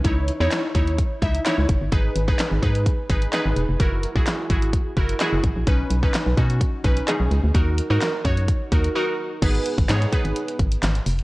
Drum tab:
CC |----------------|----------------|----------------|----------------|
HH |x-x-x-xxx-xxx-x-|x-x-x-xxx-xxx-x-|x-x-x-xxx-xxx-x-|x-x-x-xxx-xxx-x-|
CP |----x-------x---|----x-------x---|----x-------x---|----x-------x---|
SD |----o-------o---|----o-------o---|----o-------o---|----o-------o---|
BD |o-----o-o-o---o-|o--o--o-o-o-----|o--o--o-o-o---o-|o--o--o-o-o-----|

CC |----------------|x---------------|
HH |x-x-x-xxx-xx----|xxxxxxxxxxxxxxox|
CP |----x-----------|----x-------x---|
SD |----o-----------|----o-------o---|
BD |o-----o-o-o-----|o--o--o---o-----|